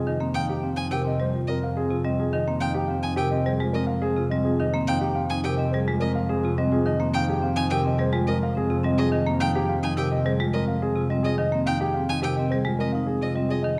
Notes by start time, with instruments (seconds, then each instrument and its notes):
Already playing: double bass F2, vibraphone F4, grand piano G#4
0.07 marimba D#3, vibraphone D#4, grand piano D#5
0.20 marimba A#3, vibraphone C4
0.34 marimba D#3, vibraphone D#4, grand piano F5, violin G5
0.49 grand piano G4
0.63 vibraphone C4, grand piano F5
0.76 vibraphone D#4, violin G#5
0.91 marimba C3, grand piano G4, vibraphone A#4, violin G5
1.05 vibraphone C4, grand piano D#5
1.20 marimba G3, grand piano C5
1.33 vibraphone F4
1.47 vibraphone C4, grand piano A#4, violin D#5
1.63 grand piano F5
1.77 vibraphone C4, grand piano G#4
1.90 marimba C3, vibraphone F4
2.05 marimba G3, vibraphone C4, grand piano D#5
2.19 vibraphone F4, grand piano G#4
2.33 marimba D#3, vibraphone D#4, grand piano D#5
2.47 marimba A#3, vibraphone C4
2.60 marimba D#3, vibraphone D#4, grand piano F5, violin G5
2.75 grand piano G4
2.88 vibraphone C4, grand piano F5
3.03 vibraphone D#4, violin G#5
3.16 marimba C3, grand piano G4, vibraphone A#4, violin G5
3.31 vibraphone C4, grand piano D#5
3.46 marimba G3, vibraphone G#4, grand piano C5
3.60 marimba G#3, vibraphone F4
3.73 vibraphone C4, grand piano A#4, violin D#5
3.87 grand piano F5
4.02 vibraphone C4, grand piano G#4
4.17 marimba C3, vibraphone F4
4.30 marimba G3, vibraphone C4, grand piano D#5
4.45 vibraphone F4, grand piano G#4
4.60 marimba D#3, vibraphone D#4, grand piano D#5
4.74 marimba A#3, vibraphone C4
4.87 marimba D#3, vibraphone D#4, grand piano F5, violin G5
5.01 grand piano G4
5.15 vibraphone C4, grand piano F5
5.30 vibraphone D#4, violin G#5
5.44 marimba C3, grand piano G4, vibraphone A#4, violin G5
5.57 vibraphone C4, grand piano D#5
5.72 marimba G3, vibraphone G#4, grand piano C5
5.87 marimba G#3, vibraphone F4
6.00 vibraphone C4, grand piano A#4, violin D#5
6.15 grand piano F5
6.29 vibraphone C4, grand piano G#4
6.44 marimba C3, vibraphone F4
6.58 marimba G3, vibraphone C4, grand piano D#5
6.72 vibraphone F4, grand piano G#4
6.86 marimba D#3, vibraphone D#4, grand piano D#5
7.00 marimba A#3, vibraphone C4
7.14 marimba D#3, vibraphone D#4, grand piano F5, violin G5
7.29 grand piano G4, vibraphone G#4
7.42 vibraphone C4, grand piano F5
7.56 marimba D#3, vibraphone D#4, violin G#5
7.70 marimba C3, grand piano G4, vibraphone A#4, violin G5
7.85 vibraphone C4, grand piano D#5
7.98 marimba G3, vibraphone G#4, grand piano C5
8.13 marimba G#3, vibraphone F4
8.27 vibraphone C4, grand piano A#4, violin D#5
8.43 grand piano F5
8.55 vibraphone C4, grand piano G#4
8.70 marimba C3, vibraphone F4
8.84 marimba G3, vibraphone C4, grand piano D#5
8.98 vibraphone F4, grand piano G#4, violin D#5
9.12 marimba D#3, vibraphone D#4, grand piano D#5
9.26 marimba A#3, vibraphone C4
9.40 marimba D#3, vibraphone D#4, grand piano F5, violin G5
9.55 grand piano G4, vibraphone G#4
9.69 vibraphone C4, grand piano F5
9.83 marimba D#3, vibraphone D#4, violin G#5
9.97 marimba C3, grand piano G4, vibraphone A#4, violin G5
10.11 vibraphone C4, grand piano D#5
10.25 marimba G3, vibraphone G#4, grand piano C5
10.39 marimba G#3, vibraphone F4
10.53 vibraphone C4, grand piano A#4, violin D#5
10.68 grand piano F5
10.82 vibraphone C4, grand piano G#4
10.96 marimba C3, vibraphone F4
11.10 marimba G3, vibraphone C4, grand piano D#5
11.23 vibraphone F4, grand piano G#4, violin D#5
11.38 marimba D#3, vibraphone D#4, grand piano D#5
11.52 marimba A#3, vibraphone C4
11.66 marimba D#3, vibraphone D#4, grand piano F5, violin G5
11.81 grand piano G4, vibraphone G#4
11.94 vibraphone C4, grand piano F5
12.09 marimba D#3, vibraphone D#4, violin G#5
12.22 marimba C3, grand piano G4, vibraphone A#4, violin G5
12.36 vibraphone C4, grand piano D#5
12.50 marimba G3, vibraphone G#4, grand piano C5
12.65 marimba G#3, vibraphone F4
12.79 vibraphone C4, grand piano A#4, violin D#5
12.92 vibraphone D#4, grand piano F5
13.07 vibraphone C4, grand piano G#4
13.22 marimba C3, vibraphone F4, violin D#5
13.35 marimba G3, vibraphone C4, grand piano D#5
13.49 vibraphone F4, grand piano G#4, violin D#5
13.63 marimba D#3, vibraphone D#4, grand piano D#5